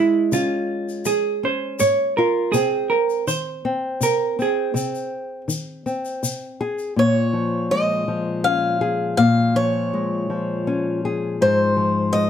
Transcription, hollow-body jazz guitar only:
0.00 0.34 E4 medium
0.33 1.06 F4 medium
1.06 1.45 G#4 medium
1.45 1.80 C5 medium
1.80 2.17 C#5 medium
2.17 2.55 A#4 medium
2.52 2.91 G#4 medium
2.90 3.25 A#4 medium
3.28 4.03 C5 medium
4.03 4.37 A#4 medium
4.42 6.21 G#4 medium

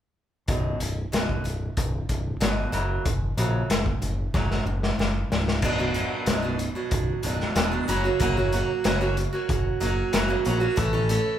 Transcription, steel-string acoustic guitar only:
0.48 0.79 F#2 medium
0.48 0.79 B2 medium
1.12 1.43 F#2 medium
1.12 1.43 B2 medium
1.44 1.74 F#2 medium
1.44 1.73 B2 medium
1.77 2.06 F#2 medium
1.77 2.06 B2 medium
2.09 2.38 F#2 medium
2.09 2.38 B2 medium
2.40 2.71 F#2 medium
2.40 2.72 B2 medium
2.72 3.03 F#2 medium
2.72 3.04 C#3 medium
2.72 3.04 F#3 medium
3.05 3.34 F#2 medium
3.05 3.35 C#3 medium
3.37 3.68 F#2 medium
3.37 3.68 C#3 medium
3.37 3.68 F#3 medium
3.70 3.99 F#2 medium
3.70 3.99 C#3 medium
4.02 4.31 F#2 medium
4.02 4.31 C#3 medium
4.34 4.64 F#2 medium
4.34 4.64 C#3 medium
4.34 4.65 F#3 medium
4.66 4.95 F#2 medium
4.66 4.96 C#3 medium
4.99 5.28 F#2 medium
4.99 5.28 C#3 medium
5.32 5.60 F#2 medium
5.32 5.60 C#3 medium
5.63 5.93 F#2 medium
5.63 5.64 B2 medium
5.63 5.79 B2 medium
5.63 5.79 F#3 medium
5.63 5.77 D4 medium
5.78 5.94 B2 soft
5.78 5.95 F#3 medium
5.78 5.95 D4 medium
5.94 6.26 F#2 medium
5.94 6.26 B2 medium
5.94 6.28 F#3 medium
5.94 6.27 D4 medium
6.26 6.57 F#2 medium
6.26 6.45 B2 medium
6.26 6.44 F#3 medium
6.26 6.41 D4 medium
6.42 6.58 B2 medium
6.42 6.59 F#3 soft
6.42 6.58 D4 medium
6.59 muted steel-string acoustic guitar stroke soft
6.75 7.22 B2 soft
6.75 7.23 F#3 medium
6.75 7.24 D4 medium
7.23 7.55 F#2 medium
7.23 7.55 B2 medium
7.23 7.56 F#3 medium
7.23 7.56 D4 medium
7.55 7.86 F#2 medium
7.55 7.74 B2 medium
7.55 7.72 F#3 medium
7.55 7.70 D4 medium
7.71 7.87 B2 soft
7.71 7.87 F#3 soft
7.71 7.86 D4 medium
7.88 8.19 F#2 medium
7.88 8.20 C#3 medium
7.88 8.05 F#3 medium
7.88 8.05 A#3 medium
7.88 8.05 C#4 medium
7.88 8.03 F#4 medium
8.04 8.20 F#3 soft
8.04 8.21 A#3 soft
8.04 8.21 C#4 medium
8.04 8.22 F#4 medium
8.20 8.69 F#2 medium
8.20 8.69 C#3 medium
8.20 8.38 F#3 medium
8.20 8.37 A#3 medium
8.20 8.37 C#4 medium
8.20 8.36 F#4 medium
8.37 8.51 F#3 medium
8.37 8.52 A#3 soft
8.37 8.54 C#4 medium
8.37 8.54 F#4 medium
8.53 8.84 F#3 medium
8.53 8.85 A#3 medium
8.53 8.85 C#4 medium
8.53 8.85 F#4 medium
8.84 9.33 F#2 medium
8.84 9.33 C#3 medium
8.84 9.01 F#3 medium
8.84 9.01 A#3 medium
8.84 9.01 C#4 medium
8.84 9.00 F#4 medium
9.01 9.16 F#3 soft
9.01 9.16 A#3 medium
9.01 9.17 C#4 medium
9.01 9.17 F#4 medium
9.17 muted steel-string acoustic guitar stroke soft
9.33 9.79 F#3 soft
9.33 9.80 A#3 soft
9.33 9.81 C#4 medium
9.33 9.82 F#4 medium
9.80 10.12 F#3 medium
9.80 10.13 A#3 medium
9.80 10.13 C#4 medium
9.80 10.13 F#4 medium
10.13 10.61 F#2 medium
10.13 10.62 C#3 medium
10.13 10.29 F#3 medium
10.13 10.29 A#3 medium
10.13 10.28 C#4 medium
10.13 10.27 F#4 medium
10.28 10.44 F#3 medium
10.28 10.44 A#3 medium
10.28 10.45 C#4 medium
10.28 10.46 F#4 medium
10.45 10.62 F#3 medium
10.45 10.60 A#3 medium
10.45 10.60 C#4 medium
10.45 10.59 F#4 medium
10.60 10.76 F#3 medium
10.60 10.76 A#3 soft
10.60 10.75 C#4 medium
10.60 10.75 F#4 medium
10.76 11.25 A2 medium
10.76 11.39 E3 medium
10.76 10.94 A3 medium
10.76 10.93 C#4 medium
10.76 10.93 E4 medium
10.76 10.92 A4 medium
10.93 11.08 A3 medium
10.93 11.09 C#4 medium
10.93 11.10 E4 medium
10.93 11.10 A4 medium
11.09 11.39 A3 medium
11.09 11.39 C#4 medium
11.09 11.39 E4 medium
11.09 11.39 A4 medium

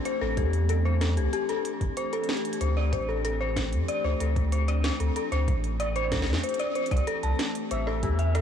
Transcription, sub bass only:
0.21 0.39 A1 loud
0.37 1.19 E2 loud
1.17 1.27 C2 medium
1.81 1.91 G1 loud
2.61 2.94 D2 loud
2.93 3.74 A1 loud
3.72 3.83 F2 medium
4.04 4.15 D2 medium
4.20 4.91 D2 medium
5.00 5.10 D2 loud
5.32 5.49 D2 loud
5.48 6.29 A1 loud
6.27 6.38 F2 medium
6.91 7.02 C2 loud
7.23 7.34 C2 medium
7.71 8.05 A1 loud
8.03 8.41 E2 loud

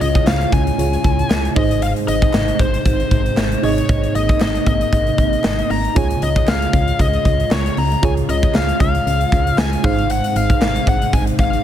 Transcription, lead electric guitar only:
0.01 0.27 D#5 medium
0.27 0.51 F5 loud
0.53 1.52 G#5 loud
1.56 1.82 D#5 medium
1.83 1.90 F5 loud
2.08 2.62 D#5 medium
2.60 3.67 C5 loud
3.64 4.15 C#5 medium
4.16 4.39 D#5 medium
4.42 4.66 D#5 loud
4.67 5.74 D#5 loud
5.71 5.97 A#5 loud
5.97 6.23 G#5 loud
6.23 6.49 D#5 medium
6.49 7.01 F5 loud
7.01 7.48 D#5 loud
7.52 7.78 C#5 medium
7.78 8.02 A#5 loud
8.05 8.11 G#5 loud
8.30 8.56 D#5 medium
8.56 8.79 F5 loud
8.81 9.58 F5 loud
9.59 9.85 G#5 loud
9.85 10.11 F5 medium
10.11 10.35 F#5 loud
10.37 10.88 F5 medium
10.89 11.14 F#5 loud
11.14 11.21 G#5 loud
11.40 11.64 F5 loud

